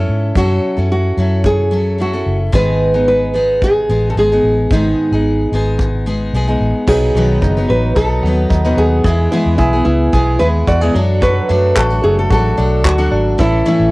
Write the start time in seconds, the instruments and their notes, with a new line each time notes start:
Already playing: steel-string acoustic guitar C#4 E4 A4, nylon-string guitar C#4
0.09 fingered electric bass G#2
0.35 fingered electric bass F#2, steel-string acoustic guitar F#3 C#4 E4 A4, nylon-string guitar F#4, kick
0.77 fingered electric bass F#2, steel-string acoustic guitar C#4 E4 A4
0.92 nylon-string guitar F#4
1.17 fingered electric bass F#2, steel-string acoustic guitar F#3 C#4 E4 A4
1.44 nylon-string guitar G#4, kick
1.71 steel-string acoustic guitar F#3 C#4 E4 A4
1.98 steel-string acoustic guitar F#3 C#4 E4 A4, nylon-string guitar F#4
2.13 steel-string acoustic guitar C#4 E4 A4
2.26 fingered electric bass F#1
2.52 fingered electric bass G#1, steel-string acoustic guitar G#2 D#3 G#3 B3 D#4 G#4, nylon-string guitar B4, kick
2.94 steel-string acoustic guitar G#3 B3 D#4 G#4
3.08 nylon-string guitar B4
3.34 steel-string acoustic guitar G#3 B3 D#4 G#4
3.62 nylon-string guitar G#4, kick
3.89 fingered electric bass A1, steel-string acoustic guitar G#3 B3 D#4 G#4
4.10 nylon-string guitar A4
4.15 fingered electric bass G#1, steel-string acoustic guitar G#3 B3 D#4 G#4, nylon-string guitar G#4
4.32 steel-string acoustic guitar G#3 B3 D#4 G#4
4.43 fingered electric bass A1
4.71 fingered electric bass G#1, steel-string acoustic guitar G#2 D#3 G#3 B3 D#4 G#4, nylon-string guitar D#4, kick
5.12 fingered electric bass G#1, steel-string acoustic guitar G#3 B3 D#4 G#4
5.52 fingered electric bass G#1, steel-string acoustic guitar G#3 B3 D#4 G#4
5.79 kick
6.06 steel-string acoustic guitar G#3 B3 D#4 G#4
6.33 fingered electric bass B1, steel-string acoustic guitar G#3 B3 D#4 G#4
6.48 steel-string acoustic guitar G#3 B3 D#4 G#4
6.60 fingered electric bass A1
6.87 fingered electric bass B1, steel-string acoustic guitar F#3 B3 D#4 B4, clean electric guitar F#3 D#4, nylon-string guitar G#4, kick, crash
7.15 fingered electric bass B1, steel-string acoustic guitar B2 D#3 F#3 B3 D#4 B4, clean electric guitar F#3
7.42 fingered electric bass F#1, clean electric guitar D#4, kick
7.57 steel-string acoustic guitar F#3 B3 D#4 B4
7.69 fingered electric bass A1, clean electric guitar F#3, nylon-string guitar B4
7.96 fingered electric bass B1, steel-string acoustic guitar F#3 B3 D#4, clean electric guitar D#4, nylon-string guitar A4, kick
8.00 steel-string acoustic guitar B4
8.23 fingered electric bass D#2, steel-string acoustic guitar F#3, clean electric guitar B3
8.27 steel-string acoustic guitar B3 D#4 B4
8.50 fingered electric bass D#2, clean electric guitar D#4, kick
8.65 steel-string acoustic guitar B2 D#3 F#3 B3 D#4 B4
8.77 fingered electric bass D#2, clean electric guitar B3, nylon-string guitar G#4
9.04 fingered electric bass E2, clean electric guitar E3 G#4, steel-string acoustic guitar G#3 B3 E4 G#4, kick
9.31 steel-string acoustic guitar E3 G#3 B3 E4 G#4, clean electric guitar B3, nylon-string guitar E4
9.46 fingered electric bass E2
9.58 fingered electric bass B1, nylon-string guitar E4, clean electric guitar G#4, kick
9.73 steel-string acoustic guitar B3 E4 G#4
9.85 fingered electric bass C#2, clean electric guitar B3, nylon-string guitar E4
10.12 fingered electric bass B1, steel-string acoustic guitar G#3 B3 E4 G#4, clean electric guitar G#4, kick
10.39 fingered electric bass D#2, steel-string acoustic guitar G#3 B3 E4 G#4, clean electric guitar E4, nylon-string guitar B4
10.67 fingered electric bass E2, clean electric guitar F#4, nylon-string guitar D5, kick
10.81 steel-string acoustic guitar E3 G#3 B3 E4 G#4, clean electric guitar G#4
10.95 fingered electric bass F#2, clean electric guitar F#3, steel-string acoustic guitar F#3 D4 F#4 A4
11.22 clean electric guitar F#3 F#4, nylon-string guitar B4, kick
11.49 fingered electric bass F#2, steel-string acoustic guitar F#3 D4 F#4 A4, clean electric guitar A3
11.76 fingered electric bass A1, clean electric guitar F#4, nylon-string guitar A4, kick, clap
11.90 steel-string acoustic guitar D4 F#4 A4
12.03 fingered electric bass F#1, clean electric guitar A3, nylon-string guitar G#4
12.19 nylon-string guitar A4
12.30 fingered electric bass A1, steel-string acoustic guitar F#3 D4 F#4 A4, clean electric guitar F#4, nylon-string guitar A4, kick
12.57 fingered electric bass B1, steel-string acoustic guitar F#3 D4 F#4 A4, clean electric guitar D4
12.84 fingered electric bass D2, clean electric guitar F#4, nylon-string guitar F#4, kick, clap
12.98 steel-string acoustic guitar F#3 D4 F#4 A4
13.11 fingered electric bass G#1, clean electric guitar D4
13.38 fingered electric bass A1, clean electric guitar E3 A4, steel-string acoustic guitar A3 C#4 E4 A4, nylon-string guitar E4, kick
13.65 steel-string acoustic guitar A2 E3 A3 C#4 E4 A4, clean electric guitar A3, nylon-string guitar E4
13.79 fingered electric bass A1